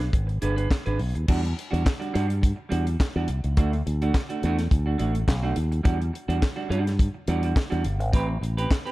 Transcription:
0.00 muted clean electric guitar stroke, closed hi-hat
0.13 G#1, muted clean electric guitar stroke, kick, closed hi-hat
0.27 muted clean electric guitar stroke, closed hi-hat
0.42 G1 D4 G#4 B4, closed hi-hat
0.56 D4 G#4 B4, closed hi-hat
0.69 muted clean electric guitar stroke, kick, snare, clap
0.86 G#1 D4 G#4 B4, closed hi-hat
0.99 B1, muted clean electric guitar stroke, open hi-hat
1.14 D#2, muted clean electric guitar stroke, closed hi-hat
1.28 E2 G3 D4 F#4, kick, crash
1.43 muted clean electric guitar stroke, closed hi-hat
1.55 muted clean electric guitar stroke, closed hi-hat
1.71 E2 G3 D4 F#4, closed hi-hat
1.85 muted clean electric guitar stroke, kick, snare, clap
2.00 G3 D4 F#4, closed hi-hat
2.13 G2 G3 D4 F#4, closed hi-hat
2.28 muted clean electric guitar stroke, closed hi-hat
2.42 muted clean electric guitar stroke, kick, closed hi-hat
2.56 muted clean electric guitar stroke
2.69 E2 G3 D4 F#4, closed hi-hat
2.87 muted clean electric guitar stroke, closed hi-hat
3.00 muted clean electric guitar stroke, kick, snare, clap
3.16 E2 G3 D4 F#4
3.28 C2, muted clean electric guitar stroke, closed hi-hat
3.44 C#2, muted clean electric guitar stroke, closed hi-hat
3.57 D2 A3 D4 F#4, kick, closed hi-hat
3.72 muted clean electric guitar stroke, closed hi-hat
3.86 D2, muted clean electric guitar stroke, closed hi-hat
4.02 A3 D4 F#4, closed hi-hat
4.14 kick, snare, clap
4.29 A3 D4 F#4, closed hi-hat
4.43 E2 A3 D4 F#4, closed hi-hat
4.58 muted clean electric guitar stroke, snare, closed hi-hat
4.71 D2, muted clean electric guitar stroke, kick, closed hi-hat
4.86 A3 D4 F#4
4.98 A1 A3 D4 F#4, closed hi-hat
5.14 muted clean electric guitar stroke, closed hi-hat
5.28 B1, muted clean electric guitar stroke, kick, snare, clap
5.43 A3 D4 F#4
5.56 D#2, muted clean electric guitar stroke, closed hi-hat
5.72 muted clean electric guitar stroke, closed hi-hat
5.83 E2 G3 D4 F#4, kick, closed hi-hat
5.99 muted clean electric guitar stroke, closed hi-hat
6.13 muted clean electric guitar stroke, closed hi-hat
6.28 E2 G3 D4 F#4, closed hi-hat
6.42 muted clean electric guitar stroke, kick, snare, clap
6.56 G3 D4 F#4
6.69 G2 G3 D4 F#4, closed hi-hat
6.85 muted clean electric guitar stroke, snare, closed hi-hat
6.99 muted clean electric guitar stroke, kick, closed hi-hat
7.14 muted clean electric guitar stroke
7.28 E2 G3 D4 F#4, closed hi-hat
7.43 G3 D4 F#4, closed hi-hat
7.56 muted clean electric guitar stroke, kick, snare, clap
7.70 E2 G3 D4 F#4, closed hi-hat
7.84 G1, muted clean electric guitar stroke, closed hi-hat
7.99 G#1, muted clean electric guitar stroke, closed hi-hat
8.13 A1 C4 G4 B4, kick, closed hi-hat
8.29 muted clean electric guitar stroke
8.41 A1, muted clean electric guitar stroke, closed hi-hat
8.57 C4 G4 B4, closed hi-hat
8.71 kick, snare, clap
8.86 C4 G4 B4, closed hi-hat

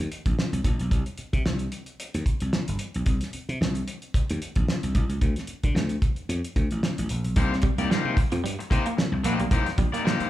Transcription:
0.00 closed hi-hat
0.12 closed hi-hat
0.26 A#1, kick, closed hi-hat
0.39 snare
0.53 C2, closed hi-hat
0.64 A#1, kick, closed hi-hat
0.80 B1, closed hi-hat
0.91 C2, kick, closed hi-hat
1.06 closed hi-hat
1.18 muted slap bass stroke, closed hi-hat
1.33 C3, kick, closed hi-hat
1.46 C2, snare
1.59 closed hi-hat
1.72 closed hi-hat
1.86 closed hi-hat
2.00 closed hi-hat
2.14 D#2, closed hi-hat
2.26 kick, closed hi-hat
2.40 C2, closed hi-hat
2.53 snare
2.68 G1, closed hi-hat
2.79 closed hi-hat
2.94 B1, closed hi-hat
3.06 C2, kick, closed hi-hat
3.21 snare, closed hi-hat
3.33 muted slap bass stroke, closed hi-hat
3.49 C3, closed hi-hat
3.61 C2, snare
3.75 closed hi-hat
3.88 closed hi-hat
4.02 closed hi-hat
4.14 kick, closed hi-hat
4.30 D#2, closed hi-hat
4.42 closed hi-hat
4.56 A#1, kick, closed hi-hat
4.68 snare
4.83 C2, closed hi-hat
4.95 C2, kick, closed hi-hat
5.09 C#2, closed hi-hat
5.21 D2, kick, closed hi-hat
5.36 snare, closed hi-hat
5.47 muted slap bass stroke, closed hi-hat
5.63 D3, kick, closed hi-hat
5.75 D2, snare
5.89 closed hi-hat
6.02 kick, closed hi-hat
6.16 closed hi-hat
6.29 F2, closed hi-hat
6.45 closed hi-hat
6.56 D2, kick, closed hi-hat
6.71 A1, closed hi-hat
6.83 snare
6.98 A1, closed hi-hat
7.09 A#1, closed hi-hat
7.24 B1, closed hi-hat
7.36 C2 A#3 D#4 G4 C5, kick, closed hi-hat
7.52 muted clean electric guitar stroke, snare
7.62 G3, muted clean electric guitar stroke, kick, closed hi-hat
7.78 C2 A#3 D#4 G4 D5, closed hi-hat
7.90 G3 A#3 D#4 G4 C5, snare
8.05 C3
8.17 muted clean electric guitar stroke, kick, closed hi-hat
8.32 F2 F3, muted clean electric guitar stroke, closed hi-hat
8.44 G2 G3, closed hi-hat
8.59 muted clean electric guitar stroke, closed hi-hat
8.70 C3 A#3 D#4 G4 C5, kick, closed hi-hat
8.86 A#3, muted clean electric guitar stroke, closed hi-hat
8.97 muted clean electric guitar stroke, snare
9.12 C2, muted clean electric guitar stroke
9.24 A#1 A#3 D#4 G4 C5, closed hi-hat
9.39 B1 G3, muted clean electric guitar stroke, closed hi-hat
9.51 C2 A#3 D#4 G4 C5, kick, closed hi-hat
9.66 muted clean electric guitar stroke, snare, closed hi-hat
9.78 A#1 G3, muted clean electric guitar stroke, kick, closed hi-hat
9.92 A#3 D#4 G4 D5, closed hi-hat
10.04 G3 A#3 D#4 G4 C5, snare
10.20 muted slap bass stroke, closed hi-hat

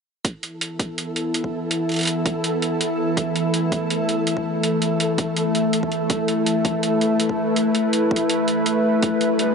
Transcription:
0.24 E3 B3 E4 A4, kick, closed hi-hat
0.43 closed hi-hat
0.61 closed hi-hat
0.79 kick, closed hi-hat
0.98 closed hi-hat
1.16 closed hi-hat
1.34 closed hi-hat
1.44 kick
1.71 closed hi-hat
1.89 closed hi-hat
1.92 closed hi-hat
1.94 closed hi-hat
1.96 closed hi-hat
1.99 closed hi-hat
2.01 closed hi-hat
2.03 closed hi-hat
2.05 closed hi-hat
2.07 closed hi-hat
2.26 kick, closed hi-hat
2.44 closed hi-hat
2.62 closed hi-hat
2.81 closed hi-hat
3.17 A3, kick, closed hi-hat
3.36 closed hi-hat
3.54 closed hi-hat
3.72 kick, closed hi-hat
3.90 closed hi-hat
4.09 closed hi-hat
4.27 closed hi-hat
4.37 kick
4.63 closed hi-hat
4.82 closed hi-hat
5.00 closed hi-hat
5.18 kick, closed hi-hat
5.37 closed hi-hat
5.55 closed hi-hat
5.73 closed hi-hat
5.83 kick
5.92 closed hi-hat
6.10 E4 B4, kick, closed hi-hat
6.28 closed hi-hat
6.46 closed hi-hat
6.65 kick, closed hi-hat
6.83 closed hi-hat
7.01 closed hi-hat
7.20 closed hi-hat
7.29 kick
7.56 closed hi-hat
7.75 closed hi-hat
7.93 closed hi-hat
8.11 kick
8.16 closed hi-hat
8.30 closed hi-hat
8.48 closed hi-hat
8.66 closed hi-hat
9.02 D4, kick, closed hi-hat, riser
9.21 closed hi-hat
9.39 closed hi-hat

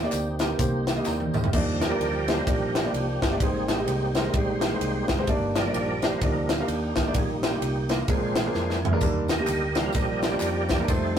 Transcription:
Already playing: D#3 A#3 C4 D#4 G4
0.03 A#3 D#4 G4 D5
0.12 D2, clap, closed hi-hat, tambourine
0.39 A#3 D#4 G4 A#4, snare, closed hi-hat, tambourine
0.59 C2 A#3 D#4 G4 C5, kick, closed hi-hat, tambourine
0.87 snare, closed hi-hat, tambourine
0.96 A#3 D#4 G4 D#5
1.05 D#2 D5 A#5, snare, clap, tambourine
1.20 high tom
1.34 D2 G4 D#5, mid tom, tambourine
1.44 floor tom
1.53 D#2 D#3 F3 G3 A#3 D4 D#4 G4 D5, kick, crash
1.80 G4 A#4 D5, snare, ride
1.90 A#3 D4 D#4 G4 A#4
2.00 D2, ride
2.28 A#3 D4 D#4 G4 C5 D5, snare, ride
2.46 A#1 A#3 D4 D#4 G4 A#4 D5, kick, ride
2.75 snare, ride
2.84 A#3 D4 D#4 G4 D5
2.93 C2 A#3 D4 G4, ride
3.22 G1, kick, snare, ride
3.31 A#3 D4 D#4 G4 D5
3.40 G#1 G#2 G3 G#3 A#3 C4 D#4 G4 G#4 C5, kick, ride
3.68 C4 D#4 G4, snare, ride
3.78 G#3 C4 D#4 G4 D#5
3.87 C2, ride
4.15 G#3 C4 D#4 G4 A#4 C5, snare, ride
4.34 A#1 G#3 C4 D#4 G4 C5 D5, kick, ride
4.61 snare, ride
4.72 G#3 C4 D#4 G4 C5
4.81 C2, ride
5.08 F#1, kick, snare, ride
5.18 G#3 C4 D#4 G4 C5
5.27 G1 G2 A#3 D4 D#4 G4 D5, kick, ride
5.56 F3 G3 D4 A#4 D5, snare, ride
5.66 A#3 D4 D#4 G4 D5
5.74 A#1, ride
6.02 A#3 D4 D#4 G4 C5 D5, snare, ride
6.21 D2 A#3 D4 D#4 G4 A#4 D5, kick, ride
6.49 F3 G3 D4, snare, ride
6.59 A#3 D4 D#4 G4 F5
6.68 D#2 A#3 D4 G4, ride
6.96 A1, kick, snare, ride
7.07 A#3 D4 D#4 G4 D5
7.14 A#1 A#2 G3 A#3 D#4 G4 G#4, kick, ride
7.42 A#3 D#4 G4, snare, ride
7.53 A#3 D#4 F4
7.61 C2, ride
7.89 A#3 D#4 F4 A#4, snare, ride
8.06 A#1 A#2 G#3 A#3 C4 D4 F4 G#4 A#4 C5, kick, ride
8.36 snare, ride
8.46 G#3 A#3 D4 F4 A#4
8.54 F2, snare
8.70 snare
8.85 floor tom
8.92 G#3 A#3 D4 F4 A#4
9.01 D#2 D#3 G3 A#3 D4 D#4 A#4, kick, tambourine, splash
9.28 G4 A#4 D#5, snare, ride, tambourine
9.38 G3 A#3 D4 D#4 G4
9.47 D2, clap, ride, tambourine
9.75 F3 G3 A#3 D4 D#4 A#4 F5, snare, ride, tambourine
9.92 A#1 G3 A#3 D4 D#4 G4 A#4 D#5, kick, ride, tambourine
10.22 G4 A#4 D5, snare, ride, tambourine
10.32 G3 A#3 D4 D#4 F4
10.40 F2, clap, ride, tambourine
10.69 kick, snare, ride, tambourine
10.79 G3 A#3 D4 D#4 A#4
10.88 F2 G3 A3 C4 D#4 F4 A4 C5, kick, ride, tambourine

